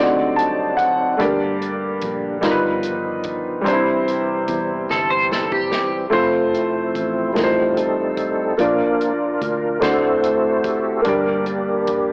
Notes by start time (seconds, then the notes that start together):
Already playing: D2 D3 F#3 G3 C4 D4 D#4 D5
0.03 F#4
0.36 A5, closed hi-hat
0.77 F#5, kick, closed hi-hat
1.17 G1 G2 D3 G3 A3 A#3 D4 G4 D5, kick, closed hi-hat
1.23 A#3
1.62 closed hi-hat
2.01 A#1, kick, closed hi-hat
2.41 G1 G2 D#3 F3 G3 B3 D#4 F4 A#4, snare, closed hi-hat
2.51 B4
2.83 closed hi-hat
3.23 kick, closed hi-hat
3.61 C3 E3 G3 C4
3.65 C2 C4 D4 C5, kick, closed hi-hat
3.73 E4
4.08 closed hi-hat
4.48 E2, kick, closed hi-hat
4.90 G1 A4, snare
5.10 C5
5.32 A4, snare
5.52 G4, mid tom
5.72 snare
6.10 F1 F3 A3 C4 F4 C5, kick, splash
6.54 A3 C4 E4, closed hi-hat
6.95 A1, kick, closed hi-hat
7.33 A1 A2 G3 A3 C4 D#4 F4, snare, closed hi-hat
7.37 A#4
7.44 C5
7.77 C4 D#4 A4, closed hi-hat
8.17 kick, closed hi-hat
8.57 A#1 A#2 F3 A#3 D4 F4 A#4 D5, kick, closed hi-hat
9.01 closed hi-hat
9.41 D2, kick, closed hi-hat
9.80 D2 D3 A3 C4 D4 E4 F#4 A4 C5, snare, closed hi-hat
10.23 closed hi-hat
10.64 G4, kick, closed hi-hat
11.02 G1 G2 G3 A#3 D4 G4 A#4, kick, closed hi-hat
11.07 G4 D5
11.46 A#3 D4 G4, closed hi-hat
11.87 A#1, kick, closed hi-hat